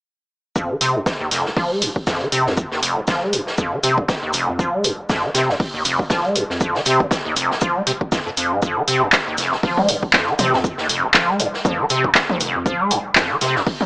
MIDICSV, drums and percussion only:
0, 0, Header, 1, 2, 480
1, 0, Start_track
1, 0, Key_signature, -4, "minor"
1, 0, Tempo, 504202
1, 531, Time_signature, 4, 2, 24, 8
1, 13193, End_track
2, 0, Start_track
2, 0, Title_t, "Drums"
2, 531, Note_on_c, 9, 36, 113
2, 533, Note_on_c, 9, 82, 77
2, 626, Note_off_c, 9, 36, 0
2, 628, Note_off_c, 9, 82, 0
2, 771, Note_on_c, 9, 46, 100
2, 777, Note_on_c, 9, 82, 67
2, 866, Note_off_c, 9, 46, 0
2, 872, Note_off_c, 9, 82, 0
2, 1011, Note_on_c, 9, 36, 118
2, 1011, Note_on_c, 9, 38, 111
2, 1014, Note_on_c, 9, 82, 86
2, 1106, Note_off_c, 9, 36, 0
2, 1107, Note_off_c, 9, 38, 0
2, 1110, Note_off_c, 9, 82, 0
2, 1250, Note_on_c, 9, 46, 102
2, 1255, Note_on_c, 9, 38, 50
2, 1257, Note_on_c, 9, 82, 71
2, 1345, Note_off_c, 9, 46, 0
2, 1350, Note_off_c, 9, 38, 0
2, 1353, Note_off_c, 9, 82, 0
2, 1387, Note_on_c, 9, 38, 38
2, 1482, Note_off_c, 9, 38, 0
2, 1491, Note_on_c, 9, 36, 110
2, 1491, Note_on_c, 9, 46, 84
2, 1586, Note_off_c, 9, 36, 0
2, 1587, Note_off_c, 9, 46, 0
2, 1731, Note_on_c, 9, 46, 101
2, 1732, Note_on_c, 9, 82, 63
2, 1826, Note_off_c, 9, 46, 0
2, 1827, Note_off_c, 9, 82, 0
2, 1866, Note_on_c, 9, 36, 57
2, 1961, Note_off_c, 9, 36, 0
2, 1969, Note_on_c, 9, 82, 89
2, 1971, Note_on_c, 9, 36, 116
2, 1976, Note_on_c, 9, 38, 121
2, 2064, Note_off_c, 9, 82, 0
2, 2066, Note_off_c, 9, 36, 0
2, 2071, Note_off_c, 9, 38, 0
2, 2102, Note_on_c, 9, 42, 39
2, 2198, Note_off_c, 9, 42, 0
2, 2211, Note_on_c, 9, 46, 107
2, 2214, Note_on_c, 9, 82, 65
2, 2306, Note_off_c, 9, 46, 0
2, 2309, Note_off_c, 9, 82, 0
2, 2348, Note_on_c, 9, 38, 50
2, 2443, Note_off_c, 9, 38, 0
2, 2448, Note_on_c, 9, 82, 83
2, 2451, Note_on_c, 9, 36, 115
2, 2544, Note_off_c, 9, 82, 0
2, 2546, Note_off_c, 9, 36, 0
2, 2586, Note_on_c, 9, 38, 50
2, 2681, Note_off_c, 9, 38, 0
2, 2691, Note_on_c, 9, 46, 103
2, 2703, Note_on_c, 9, 82, 72
2, 2787, Note_off_c, 9, 46, 0
2, 2798, Note_off_c, 9, 82, 0
2, 2926, Note_on_c, 9, 82, 83
2, 2931, Note_on_c, 9, 36, 122
2, 2936, Note_on_c, 9, 38, 115
2, 3021, Note_off_c, 9, 82, 0
2, 3026, Note_off_c, 9, 36, 0
2, 3031, Note_off_c, 9, 38, 0
2, 3170, Note_on_c, 9, 46, 104
2, 3171, Note_on_c, 9, 82, 59
2, 3265, Note_off_c, 9, 46, 0
2, 3266, Note_off_c, 9, 82, 0
2, 3305, Note_on_c, 9, 38, 58
2, 3400, Note_off_c, 9, 38, 0
2, 3405, Note_on_c, 9, 82, 83
2, 3410, Note_on_c, 9, 36, 113
2, 3501, Note_off_c, 9, 82, 0
2, 3506, Note_off_c, 9, 36, 0
2, 3648, Note_on_c, 9, 82, 59
2, 3651, Note_on_c, 9, 46, 103
2, 3743, Note_off_c, 9, 82, 0
2, 3746, Note_off_c, 9, 46, 0
2, 3786, Note_on_c, 9, 36, 61
2, 3881, Note_off_c, 9, 36, 0
2, 3888, Note_on_c, 9, 38, 111
2, 3891, Note_on_c, 9, 36, 116
2, 3893, Note_on_c, 9, 82, 75
2, 3983, Note_off_c, 9, 38, 0
2, 3986, Note_off_c, 9, 36, 0
2, 3988, Note_off_c, 9, 82, 0
2, 4123, Note_on_c, 9, 82, 67
2, 4131, Note_on_c, 9, 46, 109
2, 4218, Note_off_c, 9, 82, 0
2, 4226, Note_off_c, 9, 46, 0
2, 4371, Note_on_c, 9, 36, 122
2, 4375, Note_on_c, 9, 82, 86
2, 4466, Note_off_c, 9, 36, 0
2, 4470, Note_off_c, 9, 82, 0
2, 4610, Note_on_c, 9, 82, 69
2, 4611, Note_on_c, 9, 46, 110
2, 4705, Note_off_c, 9, 82, 0
2, 4706, Note_off_c, 9, 46, 0
2, 4851, Note_on_c, 9, 36, 124
2, 4851, Note_on_c, 9, 82, 92
2, 4854, Note_on_c, 9, 38, 116
2, 4946, Note_off_c, 9, 36, 0
2, 4946, Note_off_c, 9, 82, 0
2, 4949, Note_off_c, 9, 38, 0
2, 5086, Note_on_c, 9, 38, 48
2, 5091, Note_on_c, 9, 46, 106
2, 5100, Note_on_c, 9, 82, 63
2, 5181, Note_off_c, 9, 38, 0
2, 5186, Note_off_c, 9, 46, 0
2, 5195, Note_off_c, 9, 82, 0
2, 5230, Note_on_c, 9, 38, 35
2, 5326, Note_off_c, 9, 38, 0
2, 5329, Note_on_c, 9, 46, 79
2, 5331, Note_on_c, 9, 36, 122
2, 5424, Note_off_c, 9, 46, 0
2, 5426, Note_off_c, 9, 36, 0
2, 5566, Note_on_c, 9, 82, 68
2, 5571, Note_on_c, 9, 46, 107
2, 5661, Note_off_c, 9, 82, 0
2, 5667, Note_off_c, 9, 46, 0
2, 5706, Note_on_c, 9, 36, 64
2, 5801, Note_off_c, 9, 36, 0
2, 5806, Note_on_c, 9, 38, 113
2, 5811, Note_on_c, 9, 36, 123
2, 5811, Note_on_c, 9, 82, 83
2, 5901, Note_off_c, 9, 38, 0
2, 5906, Note_off_c, 9, 36, 0
2, 5907, Note_off_c, 9, 82, 0
2, 5947, Note_on_c, 9, 42, 43
2, 6042, Note_off_c, 9, 42, 0
2, 6051, Note_on_c, 9, 46, 109
2, 6052, Note_on_c, 9, 82, 61
2, 6146, Note_off_c, 9, 46, 0
2, 6147, Note_off_c, 9, 82, 0
2, 6189, Note_on_c, 9, 38, 46
2, 6285, Note_off_c, 9, 38, 0
2, 6289, Note_on_c, 9, 82, 89
2, 6291, Note_on_c, 9, 36, 122
2, 6384, Note_off_c, 9, 82, 0
2, 6386, Note_off_c, 9, 36, 0
2, 6425, Note_on_c, 9, 38, 51
2, 6520, Note_off_c, 9, 38, 0
2, 6524, Note_on_c, 9, 82, 70
2, 6531, Note_on_c, 9, 46, 103
2, 6620, Note_off_c, 9, 82, 0
2, 6626, Note_off_c, 9, 46, 0
2, 6666, Note_on_c, 9, 36, 83
2, 6761, Note_off_c, 9, 36, 0
2, 6767, Note_on_c, 9, 38, 118
2, 6771, Note_on_c, 9, 36, 121
2, 6773, Note_on_c, 9, 82, 88
2, 6862, Note_off_c, 9, 38, 0
2, 6866, Note_off_c, 9, 36, 0
2, 6869, Note_off_c, 9, 82, 0
2, 7009, Note_on_c, 9, 82, 69
2, 7011, Note_on_c, 9, 46, 107
2, 7104, Note_off_c, 9, 82, 0
2, 7106, Note_off_c, 9, 46, 0
2, 7152, Note_on_c, 9, 38, 57
2, 7246, Note_on_c, 9, 82, 93
2, 7247, Note_off_c, 9, 38, 0
2, 7251, Note_on_c, 9, 36, 122
2, 7341, Note_off_c, 9, 82, 0
2, 7346, Note_off_c, 9, 36, 0
2, 7491, Note_on_c, 9, 46, 105
2, 7497, Note_on_c, 9, 82, 69
2, 7586, Note_off_c, 9, 46, 0
2, 7592, Note_off_c, 9, 82, 0
2, 7626, Note_on_c, 9, 36, 62
2, 7721, Note_off_c, 9, 36, 0
2, 7728, Note_on_c, 9, 82, 84
2, 7731, Note_on_c, 9, 36, 114
2, 7732, Note_on_c, 9, 38, 100
2, 7824, Note_off_c, 9, 82, 0
2, 7826, Note_off_c, 9, 36, 0
2, 7827, Note_off_c, 9, 38, 0
2, 7968, Note_on_c, 9, 82, 68
2, 7971, Note_on_c, 9, 46, 106
2, 8063, Note_off_c, 9, 82, 0
2, 8066, Note_off_c, 9, 46, 0
2, 8208, Note_on_c, 9, 82, 76
2, 8211, Note_on_c, 9, 36, 113
2, 8303, Note_off_c, 9, 82, 0
2, 8306, Note_off_c, 9, 36, 0
2, 8451, Note_on_c, 9, 46, 99
2, 8455, Note_on_c, 9, 82, 72
2, 8546, Note_off_c, 9, 46, 0
2, 8550, Note_off_c, 9, 82, 0
2, 8685, Note_on_c, 9, 39, 113
2, 8689, Note_on_c, 9, 82, 93
2, 8690, Note_on_c, 9, 38, 121
2, 8691, Note_on_c, 9, 36, 119
2, 8781, Note_off_c, 9, 39, 0
2, 8784, Note_off_c, 9, 82, 0
2, 8785, Note_off_c, 9, 38, 0
2, 8786, Note_off_c, 9, 36, 0
2, 8924, Note_on_c, 9, 82, 71
2, 8931, Note_on_c, 9, 46, 99
2, 8941, Note_on_c, 9, 38, 51
2, 9019, Note_off_c, 9, 82, 0
2, 9026, Note_off_c, 9, 46, 0
2, 9036, Note_off_c, 9, 38, 0
2, 9062, Note_on_c, 9, 38, 38
2, 9157, Note_off_c, 9, 38, 0
2, 9169, Note_on_c, 9, 46, 74
2, 9171, Note_on_c, 9, 36, 111
2, 9264, Note_off_c, 9, 46, 0
2, 9266, Note_off_c, 9, 36, 0
2, 9306, Note_on_c, 9, 47, 81
2, 9401, Note_off_c, 9, 47, 0
2, 9411, Note_on_c, 9, 46, 102
2, 9411, Note_on_c, 9, 82, 66
2, 9506, Note_off_c, 9, 46, 0
2, 9507, Note_off_c, 9, 82, 0
2, 9546, Note_on_c, 9, 36, 58
2, 9641, Note_off_c, 9, 36, 0
2, 9646, Note_on_c, 9, 39, 113
2, 9646, Note_on_c, 9, 82, 89
2, 9651, Note_on_c, 9, 36, 111
2, 9653, Note_on_c, 9, 38, 114
2, 9741, Note_off_c, 9, 39, 0
2, 9742, Note_off_c, 9, 82, 0
2, 9746, Note_off_c, 9, 36, 0
2, 9748, Note_off_c, 9, 38, 0
2, 9789, Note_on_c, 9, 42, 41
2, 9885, Note_off_c, 9, 42, 0
2, 9887, Note_on_c, 9, 82, 71
2, 9891, Note_on_c, 9, 46, 101
2, 9891, Note_on_c, 9, 47, 82
2, 9982, Note_off_c, 9, 82, 0
2, 9986, Note_off_c, 9, 46, 0
2, 9986, Note_off_c, 9, 47, 0
2, 10027, Note_on_c, 9, 38, 51
2, 10123, Note_off_c, 9, 38, 0
2, 10131, Note_on_c, 9, 36, 110
2, 10133, Note_on_c, 9, 82, 81
2, 10226, Note_off_c, 9, 36, 0
2, 10228, Note_off_c, 9, 82, 0
2, 10263, Note_on_c, 9, 38, 56
2, 10358, Note_off_c, 9, 38, 0
2, 10371, Note_on_c, 9, 46, 100
2, 10372, Note_on_c, 9, 82, 66
2, 10467, Note_off_c, 9, 46, 0
2, 10467, Note_off_c, 9, 82, 0
2, 10605, Note_on_c, 9, 39, 115
2, 10606, Note_on_c, 9, 38, 115
2, 10610, Note_on_c, 9, 82, 83
2, 10611, Note_on_c, 9, 36, 117
2, 10700, Note_off_c, 9, 39, 0
2, 10701, Note_off_c, 9, 38, 0
2, 10705, Note_off_c, 9, 82, 0
2, 10706, Note_off_c, 9, 36, 0
2, 10849, Note_on_c, 9, 46, 99
2, 10849, Note_on_c, 9, 82, 71
2, 10944, Note_off_c, 9, 82, 0
2, 10945, Note_off_c, 9, 46, 0
2, 10986, Note_on_c, 9, 38, 56
2, 11082, Note_off_c, 9, 38, 0
2, 11090, Note_on_c, 9, 47, 77
2, 11091, Note_on_c, 9, 36, 107
2, 11094, Note_on_c, 9, 82, 82
2, 11186, Note_off_c, 9, 36, 0
2, 11186, Note_off_c, 9, 47, 0
2, 11189, Note_off_c, 9, 82, 0
2, 11325, Note_on_c, 9, 82, 59
2, 11330, Note_on_c, 9, 46, 98
2, 11421, Note_off_c, 9, 82, 0
2, 11426, Note_off_c, 9, 46, 0
2, 11465, Note_on_c, 9, 36, 59
2, 11560, Note_off_c, 9, 36, 0
2, 11565, Note_on_c, 9, 39, 105
2, 11569, Note_on_c, 9, 82, 79
2, 11570, Note_on_c, 9, 36, 110
2, 11573, Note_on_c, 9, 38, 120
2, 11660, Note_off_c, 9, 39, 0
2, 11665, Note_off_c, 9, 82, 0
2, 11666, Note_off_c, 9, 36, 0
2, 11668, Note_off_c, 9, 38, 0
2, 11705, Note_on_c, 9, 47, 80
2, 11800, Note_off_c, 9, 47, 0
2, 11805, Note_on_c, 9, 82, 66
2, 11810, Note_on_c, 9, 46, 100
2, 11901, Note_off_c, 9, 82, 0
2, 11906, Note_off_c, 9, 46, 0
2, 12050, Note_on_c, 9, 36, 115
2, 12053, Note_on_c, 9, 82, 79
2, 12145, Note_off_c, 9, 36, 0
2, 12148, Note_off_c, 9, 82, 0
2, 12288, Note_on_c, 9, 82, 61
2, 12289, Note_on_c, 9, 46, 97
2, 12384, Note_off_c, 9, 82, 0
2, 12385, Note_off_c, 9, 46, 0
2, 12523, Note_on_c, 9, 39, 114
2, 12530, Note_on_c, 9, 36, 114
2, 12531, Note_on_c, 9, 38, 127
2, 12532, Note_on_c, 9, 82, 90
2, 12619, Note_off_c, 9, 39, 0
2, 12625, Note_off_c, 9, 36, 0
2, 12626, Note_off_c, 9, 38, 0
2, 12628, Note_off_c, 9, 82, 0
2, 12768, Note_on_c, 9, 82, 59
2, 12769, Note_on_c, 9, 46, 97
2, 12770, Note_on_c, 9, 38, 47
2, 12863, Note_off_c, 9, 82, 0
2, 12864, Note_off_c, 9, 46, 0
2, 12866, Note_off_c, 9, 38, 0
2, 12907, Note_on_c, 9, 38, 40
2, 13002, Note_off_c, 9, 38, 0
2, 13009, Note_on_c, 9, 46, 83
2, 13010, Note_on_c, 9, 36, 113
2, 13104, Note_off_c, 9, 46, 0
2, 13105, Note_off_c, 9, 36, 0
2, 13144, Note_on_c, 9, 47, 76
2, 13193, Note_off_c, 9, 47, 0
2, 13193, End_track
0, 0, End_of_file